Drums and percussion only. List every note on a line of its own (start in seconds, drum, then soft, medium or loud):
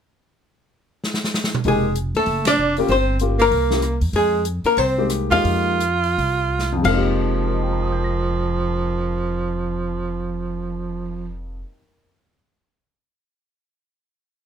1.04 snare medium
1.14 snare medium
1.24 snare medium
1.34 snare medium
1.44 snare medium
1.54 mid tom medium
1.64 kick soft
1.64 open hi-hat soft
1.96 closed hi-hat soft
2.15 open hi-hat soft
2.26 kick soft
2.26 open hi-hat soft
2.45 snare medium
2.45 ride medium
2.77 open hi-hat soft
2.88 kick soft
2.88 open hi-hat soft
3.19 closed hi-hat soft
3.39 open hi-hat soft
3.52 kick soft
3.52 open hi-hat soft
3.71 snare soft
3.82 cross-stick medium
3.82 closed hi-hat soft
4.01 open hi-hat soft
4.13 kick soft
4.13 open hi-hat soft
4.45 closed hi-hat soft
4.64 open hi-hat soft
4.77 kick soft
4.77 open hi-hat soft
5.10 cross-stick medium
5.10 closed hi-hat soft
5.31 open hi-hat soft
5.45 kick soft
5.45 open hi-hat soft
5.80 closed hi-hat soft
6.04 open hi-hat soft
6.18 kick soft
6.18 open hi-hat soft
6.59 snare soft
6.84 kick medium
6.84 crash medium